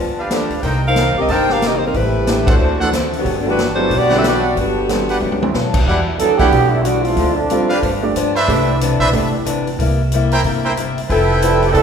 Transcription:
Already playing: D2 G3 B3 D4 F4
0.00 G2 F3 B3 D4
0.18 D4 G4 B4 F5
0.30 G2 F3 A3 B3 D4 G4 A4, snare, closed hi-hat
0.50 D2, open hi-hat
0.63 C2 C3 G3 A#3 D#4 A#4 C5 G5, kick, open hi-hat
0.87 D#4 A#4 C5 F5
0.96 C3 G3 A#3 D#4, snare, closed hi-hat
1.15 C#2 G4 A#4 D#5
1.19 C4
1.28 G1 C3 G3 A#3 D#4 A#4 C5 G5 A5, kick, open hi-hat
1.49 D4 G4 A#4 F5, snare
1.61 C3 G3 A#3 D#4, snare, closed hi-hat
1.65 C4 G4 A#4 D#5
1.75 A#3 D#4 G4 C5
1.84 G3 C4 D#4 A#4
1.94 A1 A2 G3 A3 C4 E4 G4 B4, kick, open hi-hat
2.27 A2 E3 G3 A3 C4 D4 E4 G4, snare, closed hi-hat
2.47 A3 D4 F#4 A4 C5 F#5, kick, ride
2.58 D2 D3 A3 C4 F#4
2.79 E3 A3 D4 F#4 A4 C5 F#5
2.93 D3 A3 C4 F#4, snare, closed hi-hat
3.13 open hi-hat
3.18 D3 F#3 B3 G4
3.24 G1 G2 F#3 B3 D4, kick, open hi-hat
3.39 F#3 B3 D4 A4
3.46 E3 G3 A3 D4 F#4 B4
3.56 G2 F#3 B3 D4, snare, closed hi-hat
3.73 F#3 A3 B3 D4 E4 F#4 C5
3.78 G4
3.89 B1 G2 F#3 B3 D4, kick, open hi-hat
3.95 B3 F#4 G4 D5
4.09 D3 G3 C4 D4 E4 G4 B4 F#5, snare
4.15 C4 F#4 A4 E5
4.23 G2 F#3 B3 D4, snare, closed hi-hat
4.27 F#4 G4 D5
4.55 G1 G2 F#3 B3 D4, kick, open hi-hat
4.60 D3 B3 F#4 G4
4.88 G2 F#3 G3 B3 C4 D4 F#4 A4, snare, closed hi-hat
5.09 D4 G4 B4 F#5, open hi-hat
5.20 D2 G2 F#3 B3 D4, high tom
5.32 high tom
5.42 D3 G3 C4 E4, high tom
5.54 G2 B2 F#3 B3 D4, snare
5.74 kick, crash
5.86 E2 E3 G3 D4 E4 F#4 G4 D5 F#5, kick
6.18 E3 F#3 G3 B3 D4 F#4 A4, closed hi-hat
6.37 D2 D3 E3 A3 B3 D4 E4 F#4 G4 D5 F#5, kick, open hi-hat
6.52 B1 E3 G3 D4 F#4, kick, open hi-hat
6.70 G3 B3 D4 E4
6.82 D3 E3 G3 B3 F#4, closed hi-hat
6.86 D4 F#4
7.03 A3 C4 D4 F4, open hi-hat
7.16 D2 D3 A3 C4 F4, kick, open hi-hat
7.34 F3 A3 C4 D4
7.50 D3 G3 A3 C4 F4 A4, closed hi-hat
7.69 D4 G4 B4 F5, open hi-hat
7.82 G1 G2 F3 B3 D4, kick, open hi-hat
8.03 A3 D4 G4 D5
8.15 G2 F3 B3 D4, closed hi-hat
8.34 D4 B4 C5 E5, open hi-hat
8.48 C2 C3 E3 A3 B3 D4 G4 B4, kick, open hi-hat
8.81 C3 E3 B3 D4, closed hi-hat
8.99 B1 D4 B4 C5 E5, open hi-hat
9.13 G1 C3 E3 A3 B3 D4 G4 D5, kick, open hi-hat
9.46 C3 E3 B3 D4, closed hi-hat
9.67 open hi-hat
9.79 C2 C3 G3 A#3 E4, kick, open hi-hat
10.12 C3 G3 A#3 E4, closed hi-hat
10.31 E4 A#4 C5 G5, open hi-hat
10.44 G1 C3 G3 A#3 E4, kick, open hi-hat
10.63 E4 A#4 C5 G5
10.77 C3 G3 A#3 E4, closed hi-hat
10.98 open hi-hat
11.08 F1 F3 B3 E4 A4 B4 G5, kick, open hi-hat
11.42 F3 G3 A3 B3 C4 E4 A4, closed hi-hat
11.62 E3 A3 C4 G4, open hi-hat
11.71 C2 G3 C4 E4 A4, kick, open hi-hat
11.77 F3 B3 E4 A4

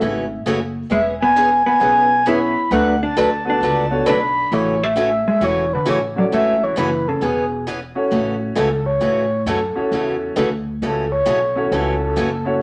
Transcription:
Already playing: A3 E5
0.01 G#1 C#3 E3 A3 C#4 F#4
0.46 F#1 C#3 E3 A3 C#4 F#4
0.90 E1 E3 G#3 B3 C#4 G#4 E5
1.21 B3 G#5
1.36 E3 B3 C#4 G#4
1.66 B3 G#5
1.80 B1 E3 B3 C#4 E4 G#4 B4
2.26 E3 B3 C#4 E4 G#4 C#5 B5
2.71 D2 D3 F#3 A3 D4 F#4 B4 F#5
3.03 D4 A5
3.17 D2 D3 F#3 A3 D4 F#4 B4
3.45 B3 D4 F#4 A4 B4 A5
3.50 D4
3.61 C#2 D3 F#3 A3 D4 F#4 B4
3.91 B3 D4 F#4 A4 C#5
4.06 B1 D3 F#3 A3 D4 F#4 B4 B5
4.52 A1 C#3 E3 A3 C#4 F#4 C#5
4.83 A3 E5
4.96 C#3 E3 A3 C#4 F#4
5.28 G#3 E5
5.41 E1 C#3 E3 A3 C#4 F#4 C#5
5.73 D3 B4
5.85 A1 C#3 E3 A3 C#4 F#4 C#5
6.16 F#3 C#4 E4 F#4 A4 C#5 D5
6.31 G#1 C#3 E3 A3 C#4 F#4 E5
6.63 E3 C#5
6.76 F#1 C#3 E3 A3 C#4 F#4 B4
7.08 C#3 A4
7.21 E1 B2 E3 B3 C#4 G#4
7.67 E3 B3 C#4 G#4
7.95 C#4 E4 F#4 A4 C#5
8.11 A1 C#3 E3 A3 C#4 F#4
8.55 C#2 C#3 E3 A3 C#4 F#4 A4
8.86 C#5
9.00 A2 C#3 E3 A3 C#4 F#4
9.46 F#2 C#3 E3 A3 C#4 F#4 A4
9.76 C#4 E4 F#4 A4 C#5, muted upright bass stroke
9.91 E2 C#3 E3 A3 C#4 F#4
10.36 D2 C#3 E3 A3 C#4 F#4
10.82 C#2 C#3 E3 A3 C#4 F#4 A4
11.12 C#5
11.26 B1 C#3 E3 A3 C#4 F#4
11.56 C#4 E4 F#4 A4 C#5
11.71 C#2 C#3 E3 A3 C#4 F#4 A4
12.03 A4
12.16 F#1 C#3 E3 A3 C#4 F#4
12.45 C#4 E4 F#4 A4 C#5

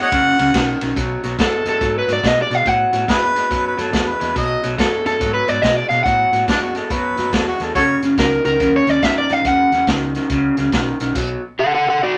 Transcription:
Already playing: B2 G#3
0.02 C#5 D#5 F#5
0.12 F#1 F#2 C#3, kick, snare, ride
0.39 C#2 F#2 C#3, snare, ride
0.54 B1 F#2 D#3, kick, snare, ride
0.81 B1 F#2 D#3, snare, ride
0.96 B1 B2 F#3, kick, snare, closed hi-hat
1.23 B1 B2 F#3, snare, closed hi-hat
1.39 F#2 B2 G#3 A4, kick, snare, closed hi-hat
1.65 F#2 B2 G#3 A4, snare, closed hi-hat
1.81 G#2 B2 F#3, kick, snare, closed hi-hat
1.99 B4
2.08 G#2 B2 F#3, snare, closed hi-hat
2.13 D5
2.23 B2 G#3 D#5, kick, snare, closed hi-hat
2.42 D5
2.50 B2 G#3, snare, closed hi-hat
2.55 F5
2.66 A2 B2 F#3 F#5, kick, snare, closed hi-hat
2.93 A2 B2 F#3, snare, closed hi-hat
3.08 F#2 B2 G#3 E4 G#4 B4, kick, snare, closed hi-hat
3.36 B2 G#3, snare, closed hi-hat
3.50 F#2 B2 F#3, kick, snare, closed hi-hat
3.67 B4
3.77 F#2 B2 F#3 A4, snare, closed hi-hat
3.92 E2 B2 G#3, kick, snare, closed hi-hat
4.08 B4
4.19 E2 B2 G#3, snare, closed hi-hat
4.35 B1 B2 F#3 D#5, kick, snare, closed hi-hat
4.63 B1 B2 F#3, snare, closed hi-hat
4.78 B2 G#3 A4, kick, snare, closed hi-hat
5.05 F#2 B2 G#3 A4, snare, closed hi-hat
5.20 G#2 B2 F#3, kick, snare, closed hi-hat
5.34 B4
5.48 G#2 B2 F#3 D5, snare, closed hi-hat
5.62 B2 G#3 D#5, kick, snare, closed hi-hat
5.76 D5
5.89 B2 G#3 F5, snare, closed hi-hat
6.04 A2 B2 F#3 F#5, kick, snare, closed hi-hat
6.32 A2 B2 F#3, snare, closed hi-hat
6.48 F#2 B2 G#3 D4, kick, snare, closed hi-hat
6.62 F#4
6.75 B2 G#3 A4, snare, closed hi-hat
6.90 F#2 B2 F#3 B4, kick, snare, closed hi-hat
7.17 F#2 B2 F#3, snare, closed hi-hat
7.33 E2 B2 G#3 A4, kick, snare, closed hi-hat
7.48 F#4
7.60 E2 B2 G#3 A4, snare, closed hi-hat
7.75 F#1 F#2 C#3 F#4 A4 C#5, kick, snare, closed hi-hat
8.02 F#1 F#2 C#3, snare, closed hi-hat
8.18 C#2 F#2 D#3 A#4, kick, snare, closed hi-hat
8.45 C#2 F#2 D#3 A#4, snare, closed hi-hat
8.60 D#2 F#2 C#3, kick, snare, closed hi-hat
8.76 C#5
8.87 D#2 C#3 D5, snare, closed hi-hat
9.02 F#2 D#3 E5, kick, snare, closed hi-hat
9.18 D5
9.29 F#2 D#3 F5, snare, closed hi-hat
9.45 E2 F#2 C#3 F#5, kick, snare, closed hi-hat
9.72 E2 F#2 C#3, snare, closed hi-hat
9.87 C#2 F#2 D#3, kick, snare, closed hi-hat
10.15 F#2 D#3, snare, closed hi-hat
10.30 C#2 F#2 C#3, kick, snare, closed hi-hat
10.57 C#2 F#2 C#3, snare, closed hi-hat
10.72 B1 F#2 D#3, kick, snare, closed hi-hat
11.00 B1 F#2 D#3, snare, closed hi-hat
11.15 B1 B2 F#3, kick, snare, closed hi-hat, crash
11.59 A4 F#5
11.74 A4 F#5
11.89 A4 F#5
12.03 F#4 D5

